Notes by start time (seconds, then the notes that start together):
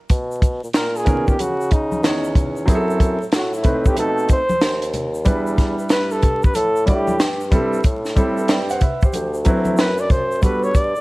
0.10 B2, kick, closed hi-hat, shaker
0.31 shaker
0.42 kick, closed hi-hat, shaker
0.63 A#2, shaker
0.73 A#2 A#4, snare, closed hi-hat, shaker
0.96 G#4, shaker
1.05 D#3 B3 C#4 A#4, kick, closed hi-hat, low conga, shaker
1.28 G4, kick, shaker
1.39 C#3 F#4, closed hi-hat, high conga, shaker
1.61 shaker
1.71 D#4, kick, closed hi-hat, shaker
1.92 high conga, shaker
2.02 E2 D#3 B3 C#4 C#5, snare, closed hi-hat, shaker
2.24 shaker
2.35 kick, closed hi-hat, low conga, shaker
2.56 shaker
2.66 F#2 F#3 C4 E4 G#4, kick, closed hi-hat, shaker
2.75 A4
2.90 shaker
3.00 kick, closed hi-hat, shaker
3.21 A2, shaker
3.32 A2 F#4, snare, closed hi-hat, shaker
3.53 E4, shaker
3.63 A3 C4 D#4 B4, kick, closed hi-hat, low conga, shaker
3.85 G4, kick, shaker
3.94 B2 A3 C4 D#4 B4, closed hi-hat, high conga, shaker
3.99 A4
4.18 shaker
4.29 C5, kick, closed hi-hat, shaker
4.49 high conga, shaker
4.61 D#2, snare, closed hi-hat, shaker
4.82 closed hi-hat, shaker
4.94 closed hi-hat, low conga, shaker
5.14 shaker
5.25 E2 G3 D4 E4 B4, kick, closed hi-hat, shaker
5.47 shaker
5.58 kick, snare, closed hi-hat, shaker
5.79 G2, shaker
5.89 G2 B4, snare, closed hi-hat, shaker
6.11 A4, shaker
6.22 kick, closed hi-hat, low conga, shaker
6.43 B4, kick, shaker
6.55 A2 A4, closed hi-hat, high conga, shaker
6.76 shaker
6.86 G3 D4 E4 G4 D5, kick, closed hi-hat, shaker
7.08 high conga, shaker
7.20 G2, snare, closed hi-hat, shaker
7.40 shaker
7.51 G3 C4 E4 A4, kick, closed hi-hat, low conga, shaker
7.73 shaker
7.84 A2, kick, closed hi-hat, shaker
8.05 snare, shaker
8.15 G3 C4 E4 A4, kick, closed hi-hat, shaker
8.37 G2, shaker
8.48 G2 D5 G5, snare, closed hi-hat, shaker
8.69 C5 F#5, closed hi-hat, shaker
8.81 B4 E5, kick, closed hi-hat, low conga, shaker
9.01 G4 C5, kick, shaker
9.13 D2, closed hi-hat, high conga, shaker
9.34 shaker
9.45 F#3 C4 E4 B4, kick, closed hi-hat, shaker
9.65 high conga, shaker
9.77 F#2 B4, snare, closed hi-hat, shaker
9.98 D5, shaker
10.10 C5, kick, closed hi-hat, low conga, shaker
10.31 shaker
10.41 G2 G3 B3 F#4 A4 B4, kick, closed hi-hat, shaker
10.63 C#5, shaker
10.74 D5, kick, closed hi-hat, shaker
10.96 A2, shaker